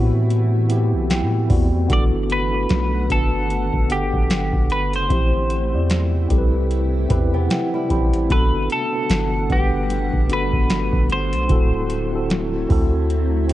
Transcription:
0.00 0.95 A2 loud
0.00 1.87 E3 medium
0.00 8.27 A3 medium
0.00 0.68 B3 loud
0.00 0.70 C4 medium
0.00 0.71 E4 medium
0.00 1.87 E4 medium
0.00 1.52 F#4 loud
0.00 0.72 G4 loud
0.00 0.11 B4 medium
0.30 closed hi-hat medium
0.68 1.43 B3 medium
0.68 1.44 C4 medium
0.68 1.44 E4 medium
0.68 1.45 G4 loud
0.68 closed hi-hat medium
0.94 1.24 B1 loud
1.10 1.47 G5 medium
1.10 snare loud
1.10 closed hi-hat medium
1.22 1.49 A2 loud
1.48 1.89 E2 loud
1.48 1.86 B3 medium
1.48 1.87 C4 medium
1.48 1.87 E4 medium
1.48 1.88 F#4 medium
1.48 1.87 D5 medium
1.48 kick loud
1.48 open hi-hat medium
1.88 2.67 G1 loud
1.88 5.07 D3 medium
1.88 2.46 B3 medium
1.88 2.47 D4 medium
1.88 2.47 F#4 medium
1.88 2.48 A4 loud
1.88 5.07 F#5 medium
1.88 kick loud
1.88 closed hi-hat medium
1.93 2.03 D5 loud
2.30 3.12 B4 loud
2.30 closed hi-hat medium
2.51 3.05 B3 medium
2.51 3.05 D4 medium
2.51 3.06 F#4 medium
2.51 3.07 B4 medium
2.70 3.09 B1 loud
2.70 snare loud
2.70 closed hi-hat medium
3.08 3.71 G1 loud
3.08 3.83 B3 medium
3.08 3.84 D4 medium
3.08 3.84 F#4 medium
3.08 3.93 A4 loud
3.08 3.85 B4 medium
3.08 kick medium
3.08 closed hi-hat medium
3.50 closed hi-hat medium
3.73 4.12 G1 loud
3.73 kick medium
3.88 5.00 B3 medium
3.88 5.01 D4 medium
3.88 4.73 G4 medium
3.88 5.02 A4 medium
3.88 5.01 F#5 medium
3.88 closed hi-hat medium
4.13 4.52 G1 loud
4.13 kick medium
4.30 snare loud
4.30 closed hi-hat medium
4.53 4.96 G1 loud
4.53 kick medium
4.70 4.93 B4 medium
4.70 closed hi-hat medium
4.93 5.10 F#1 loud
4.93 6.50 C5 medium
4.93 closed hi-hat medium
5.08 5.76 A1 medium
5.08 8.27 C3 medium
5.08 5.66 C4 loud
5.08 5.67 E4 medium
5.08 8.27 E4 medium
5.08 5.67 G4 medium
5.08 5.68 C5 loud
5.08 kick loud
5.08 closed hi-hat medium
5.50 closed hi-hat medium
5.71 6.28 E2 loud
5.71 6.25 C4 medium
5.71 6.25 E4 medium
5.71 6.26 G4 medium
5.71 6.26 D5 medium
5.90 snare loud
5.90 closed hi-hat medium
6.28 7.07 C2 loud
6.28 7.03 C4 medium
6.28 7.04 E4 medium
6.28 7.04 G4 medium
6.28 6.39 A4 medium
6.28 kick medium
6.28 closed hi-hat medium
6.38 7.08 B4 loud
6.71 closed hi-hat medium
7.08 7.49 E2 loud
7.08 7.83 C4 medium
7.08 7.33 D4 medium
7.08 7.84 E4 medium
7.08 7.84 G4 medium
7.08 7.32 B4 medium
7.08 7.85 B4 loud
7.08 7.32 E5 medium
7.08 kick medium
7.08 closed hi-hat medium
7.34 7.72 B3 medium
7.34 7.71 G4 medium
7.34 7.49 F#5 medium
7.50 7.87 G5 medium
7.50 snare loud
7.50 closed hi-hat medium
7.74 8.28 G3 medium
7.74 8.27 E4 medium
7.89 8.29 A1 loud
7.89 8.27 C4 medium
7.89 8.27 E4 medium
7.89 8.28 G4 medium
7.89 8.28 C5 medium
7.89 8.28 B5 medium
7.89 kick loud
7.89 closed hi-hat medium
8.13 closed hi-hat medium
8.29 8.69 G1 loud
8.29 11.47 D3 medium
8.29 11.47 G3 medium
8.29 13.53 A3 medium
8.29 8.87 B3 loud
8.29 8.87 D4 medium
8.29 8.88 F#4 medium
8.29 8.88 A4 loud
8.29 8.68 B4 loud
8.29 11.47 F#5 medium
8.29 kick loud
8.29 closed hi-hat medium
8.70 9.54 A4 loud
8.70 closed hi-hat medium
8.92 9.45 B3 medium
8.92 9.46 D4 medium
8.92 9.46 F#4 medium
8.92 9.47 A4 medium
9.10 9.49 G1 loud
9.10 snare loud
9.10 closed hi-hat medium
9.49 10.11 G1 loud
9.49 10.23 B3 medium
9.49 10.24 D4 medium
9.49 10.34 G4 medium
9.49 10.25 B4 medium
9.49 10.25 F#5 medium
9.49 kick medium
9.49 closed hi-hat medium
9.90 closed hi-hat medium
10.13 10.52 G1 loud
10.13 kick medium
10.28 11.40 B3 medium
10.28 11.41 D4 medium
10.28 11.41 F#4 medium
10.28 11.42 A4 medium
10.28 closed hi-hat medium
10.33 11.08 B4 loud
10.53 10.92 G1 loud
10.53 kick medium
10.70 snare loud
10.70 closed hi-hat medium
10.93 11.35 G1 loud
10.93 kick loud
11.10 13.47 C5 loud
11.10 closed hi-hat medium
11.33 11.49 B1 loud
11.33 closed hi-hat medium
11.48 12.66 D1 loud
11.48 13.53 D3 medium
11.48 13.53 F#3 medium
11.48 12.06 C4 loud
11.48 13.53 C4 medium
11.48 12.07 E4 medium
11.48 13.53 E4 medium
11.48 12.07 F#4 medium
11.48 12.08 A4 loud
11.48 kick loud
11.48 closed hi-hat medium
11.90 closed hi-hat medium
12.11 12.65 C4 medium
12.11 12.65 E4 medium
12.11 12.66 F#4 medium
12.11 12.66 A4 medium
12.30 snare loud
12.30 closed hi-hat medium
12.68 13.53 D2 loud
12.68 13.43 C4 medium
12.68 13.44 E4 medium
12.68 13.44 F#4 medium
12.68 13.45 A4 loud
12.68 kick loud
12.68 open hi-hat medium
13.10 closed hi-hat medium
13.48 13.53 C4 medium
13.48 13.53 E4 medium
13.48 closed hi-hat medium

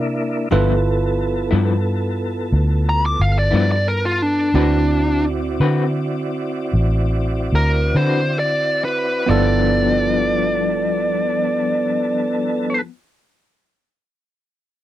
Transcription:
0.00 0.48 C3 medium
0.00 0.48 A#3 medium
0.00 0.48 D4 medium
0.00 0.49 D4 medium
0.00 0.49 E4 medium
0.00 0.49 A4 medium
0.00 0.49 A#4 medium
0.51 1.48 G1 loud
0.51 0.72 G2 medium
0.51 0.72 F3 medium
0.51 4.51 B3 medium
0.51 0.72 B3 medium
0.51 4.51 E4 medium
0.51 0.73 E4 loud
0.51 4.51 F4 medium
0.51 4.51 A4 medium
0.51 4.51 B4 medium
1.51 2.49 G2 medium
1.51 1.73 G2 medium
1.51 1.72 F3 medium
1.51 1.72 B3 medium
1.51 1.72 E4 medium
2.52 3.15 D2 medium
2.89 3.04 A#5 medium
3.06 3.21 D6 medium
3.19 3.50 G1 medium
3.19 3.37 F5 medium
3.39 3.54 D5 medium
3.51 4.51 G2 medium
3.51 3.74 G2 medium
3.51 3.73 F3 medium
3.51 3.73 B3 medium
3.51 3.72 E4 medium
3.56 3.70 D5 medium
3.72 3.87 D5 medium
3.88 4.04 A#4 medium
4.05 4.22 F4 medium
4.22 4.55 D4 medium
4.54 5.57 D2 loud
4.54 4.76 D3 medium
4.54 9.25 C4 medium
4.54 4.76 C4 medium
4.54 5.23 D4 medium
4.54 9.25 E4 medium
4.54 9.25 F#4 medium
4.54 4.76 F#4 medium
4.54 4.77 B4 medium
4.54 9.25 D5 medium
5.60 6.69 D3 medium
5.60 5.84 D3 medium
5.60 5.83 C4 medium
5.60 5.83 F#4 medium
5.60 5.83 B4 medium
6.73 7.49 A1 medium
7.53 7.91 D2 medium
7.53 7.95 A#4 loud
7.95 9.25 D3 medium
7.95 8.22 D3 medium
7.95 8.22 C4 medium
7.95 8.21 F#4 medium
7.95 8.21 B4 medium
7.95 8.37 C5 medium
8.39 8.82 D5 medium
8.85 9.28 B4 medium
9.26 12.80 G1 medium
9.26 12.81 G2 medium
9.26 12.77 B3 medium
9.26 12.78 E4 medium
9.26 12.79 F4 medium
9.26 12.81 D5 medium
9.30 12.86 F3 medium
9.30 12.82 B3 medium
9.30 12.81 A4 medium
9.35 12.90 B3 medium

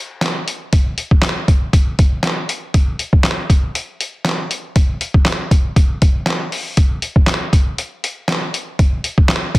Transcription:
0.21 snare loud
0.21 clap loud
0.21 closed hi-hat loud
0.48 closed hi-hat medium
0.73 kick loud
0.73 closed hi-hat loud
0.98 closed hi-hat medium
1.11 kick medium
1.22 snare medium
1.22 clap loud
1.22 closed hi-hat loud
1.48 kick medium
1.48 closed hi-hat medium
1.73 kick loud
1.73 closed hi-hat loud
1.99 kick loud
1.99 closed hi-hat medium
2.23 snare loud
2.23 clap loud
2.23 closed hi-hat loud
2.49 closed hi-hat medium
2.74 kick loud
2.74 closed hi-hat loud
2.99 closed hi-hat medium
3.13 kick medium
3.24 snare medium
3.24 clap loud
3.24 closed hi-hat loud
3.50 kick medium
3.50 closed hi-hat medium
3.75 closed hi-hat loud
4.01 closed hi-hat medium
4.25 snare loud
4.25 clap loud
4.25 closed hi-hat loud
4.51 closed hi-hat medium
4.76 kick loud
4.76 closed hi-hat loud
5.01 closed hi-hat medium
5.14 kick medium
5.25 snare medium
5.25 clap loud
5.25 closed hi-hat loud
5.51 kick medium
5.51 closed hi-hat medium
5.76 kick loud
5.76 closed hi-hat loud
6.02 kick loud
6.02 closed hi-hat medium
6.26 snare loud
6.26 clap loud
6.26 closed hi-hat loud
6.52 open hi-hat medium
6.77 kick loud
6.77 closed hi-hat loud
7.02 closed hi-hat medium
7.16 kick medium
7.27 snare medium
7.27 clap loud
7.27 closed hi-hat loud
7.53 kick medium
7.53 closed hi-hat medium
7.78 closed hi-hat loud
8.04 closed hi-hat medium
8.28 snare loud
8.28 clap loud
8.28 closed hi-hat medium
8.54 closed hi-hat medium
8.79 kick loud
8.79 closed hi-hat medium
9.04 closed hi-hat medium
9.18 kick medium
9.29 snare medium
9.29 clap loud
9.29 closed hi-hat loud
9.55 kick medium
9.55 closed hi-hat medium

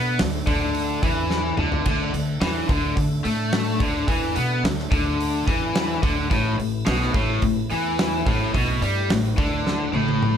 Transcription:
0.00 0.18 B2 medium
0.00 0.19 B3 loud
0.00 6.27 D4 medium
0.00 6.27 A4 medium
0.00 6.27 E5 medium
0.19 0.46 D2 medium
0.19 0.42 D3 medium
0.19 snare loud
0.19 open hi-hat medium
0.47 0.99 D2 loud
0.47 1.02 D3 loud
0.47 kick loud
0.47 open hi-hat medium
0.75 open hi-hat medium
1.03 1.54 E2 loud
1.03 1.57 E3 loud
1.03 kick loud
1.03 open hi-hat medium
1.30 snare medium
1.57 1.84 D2 medium
1.57 1.85 D3 loud
1.57 mid tom medium
1.72 floor tom medium
1.85 2.12 D2 medium
1.85 2.12 D3 loud
1.85 kick medium
1.85 crash medium
2.14 2.40 D2 medium
2.14 2.36 D3 medium
2.14 open hi-hat medium
2.41 2.67 E2 medium
2.41 2.68 E3 loud
2.41 snare loud
2.41 open hi-hat medium
2.68 2.95 D2 medium
2.68 2.96 D3 loud
2.68 kick loud
2.68 open hi-hat medium
2.97 3.23 D2 medium
2.97 3.19 D3 medium
2.97 kick medium
2.97 open hi-hat medium
3.24 3.77 A2 medium
3.24 3.80 A3 loud
3.24 open hi-hat medium
3.53 snare loud
3.53 open hi-hat medium
3.80 4.07 D2 medium
3.80 4.08 D3 loud
3.80 kick loud
3.80 open hi-hat medium
4.08 4.34 E2 medium
4.08 4.36 E3 loud
4.08 kick loud
4.08 open hi-hat medium
4.35 4.63 B2 medium
4.35 4.63 B3 loud
4.35 open hi-hat medium
4.63 4.90 D2 medium
4.63 4.86 D3 medium
4.63 snare loud
4.63 open hi-hat medium
4.79 snare soft
4.91 5.44 D2 medium
4.91 5.47 D3 loud
4.91 kick loud
4.91 open hi-hat medium
5.20 open hi-hat medium
5.48 6.00 E2 medium
5.48 6.02 E3 loud
5.48 kick loud
5.48 open hi-hat medium
5.75 snare loud
5.75 open hi-hat medium
6.03 6.29 D2 medium
6.03 6.30 D3 loud
6.03 kick loud
6.03 open hi-hat medium
6.29 6.57 A1 medium
6.29 6.57 A2 loud
6.29 10.37 A3 medium
6.29 10.37 E4 medium
6.29 10.37 B4 medium
6.29 kick loud
6.29 open hi-hat medium
6.58 6.85 A1 medium
6.58 6.81 A2 medium
6.58 open hi-hat medium
6.86 7.13 B1 medium
6.86 7.14 B2 loud
6.86 snare loud
6.86 open hi-hat medium
7.01 snare soft
7.14 7.41 A1 medium
7.14 7.42 A2 medium
7.14 kick loud
7.14 open hi-hat medium
7.42 7.69 A1 medium
7.42 7.65 A2 medium
7.42 kick medium
7.42 open hi-hat medium
7.70 8.23 E2 medium
7.70 8.25 E3 loud
7.70 open hi-hat medium
7.99 snare loud
7.99 open hi-hat medium
8.26 8.52 A1 medium
8.26 8.53 A2 loud
8.26 kick loud
8.26 open hi-hat medium
8.54 8.80 B1 medium
8.54 8.81 B2 loud
8.54 kick medium
8.54 open hi-hat medium
8.82 9.08 G2 medium
8.82 9.09 G3 loud
8.82 open hi-hat medium
9.09 9.36 A1 medium
9.09 9.32 A2 medium
9.09 snare loud
9.09 open hi-hat medium
9.37 9.90 D2 medium
9.37 9.92 D3 loud
9.37 kick loud
9.37 open hi-hat medium
9.67 snare medium
9.93 10.37 A1 medium
9.93 10.37 A2 loud
9.93 high tom medium
10.08 high tom medium
10.22 mid tom medium

